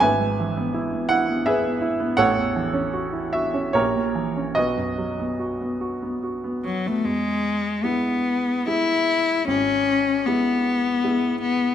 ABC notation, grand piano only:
X:1
M:3/4
L:1/16
Q:1/4=76
K:E
V:1 name="Grand piano"
[Beg]6 f2 [GBe]4 | [Acf]6 e2 [=G^Ac]4 | [FBd]8 z4 | z12 |
z12 |]
V:2 name="Grand piano"
G,,, G,, E, B, E B, E B, E B, E B, | A,,, E,, E, C F E F C ^A,,, ^A,, E, C | B,,, F,, F, B, F B, F B, F B, F B, | E,,4 [G,B,E]4 [G,B,E]4 |
G,,,4 [G,B,E]4 [G,B,E]4 |]